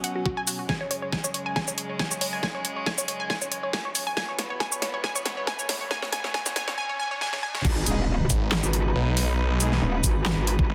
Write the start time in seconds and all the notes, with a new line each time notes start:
Already playing: B2 F#3 C#4
0.04 F#5, closed hi-hat
0.15 F#4
0.26 F#4, kick
0.37 G#5
0.47 F#4, open hi-hat, shaker
0.59 F#4
0.69 F#2 C#3 G#3 G#5, kick, snare, riser
0.81 C#5
0.91 C#5, closed hi-hat
1.02 C#5
1.12 G#5, kick, snare
1.24 C#5, shaker
1.34 C#5, closed hi-hat
1.46 G#5
1.56 G#5, kick, snare
1.68 C#5, shaker
1.78 C#5, closed hi-hat
1.89 C#5
1.99 G#5, kick, snare
2.11 C#5, shaker
2.21 C#5, open hi-hat
2.33 G#5
2.43 G#5, kick, snare
2.55 C#5
2.65 C#5, closed hi-hat
2.76 C#5
2.86 G#5, kick, snare
2.98 C#5, shaker
3.08 C#5, closed hi-hat
3.20 G#5
3.30 G#5, kick, snare
3.42 C#5, shaker
3.52 C#5, closed hi-hat
3.63 C#5
3.73 G#5, kick, snare
3.85 C#5
3.95 C#5, open hi-hat, shaker
4.07 G#5
4.17 G#2 E3 B3 G#5, kick, snare
4.28 C#5
4.39 C#5, snare, closed hi-hat
4.50 C#5
4.60 G#5, kick, snare
4.72 C#5, shaker
4.82 C#5, snare, closed hi-hat
4.94 C#5
5.04 G#5, kick, snare
5.15 C#5, shaker
5.26 C#5, snare, closed hi-hat
5.37 C#5
5.47 G#5, kick, snare
5.59 C#5, shaker
5.69 C#5, snare, open hi-hat
5.81 C#5
5.91 G#5, kick, snare
6.02 C#5, snare
6.13 G#5, snare, closed hi-hat
6.24 C#5, snare
6.34 G#5, kick, snare
6.46 C#5, snare, closed hi-hat, shaker
6.56 G#5, snare, closed hi-hat
6.68 C#5, snare
6.78 G#5
6.89 C#5
6.99 G#5
7.11 C#5
7.21 G#5, snare
7.33 C#5, snare
7.43 G#5
7.55 C#5, snare
7.65 G#1 G#3 D#4 B4, kick, crash, impact
7.86 D#1 G#3 D#4 G#4, closed hi-hat, shaker
8.30 G#1, kick, closed hi-hat, shaker
8.52 snare, clap
8.63 G#1, shaker
8.73 closed hi-hat
8.95 B1
9.17 open hi-hat
9.60 G#3 D#4 G#4, closed hi-hat, shaker
9.72 snare
9.82 D#1
10.04 G#1, kick, closed hi-hat, shaker
10.26 snare, clap
10.37 G#1
10.47 closed hi-hat
10.59 G#1, kick
10.69 G#1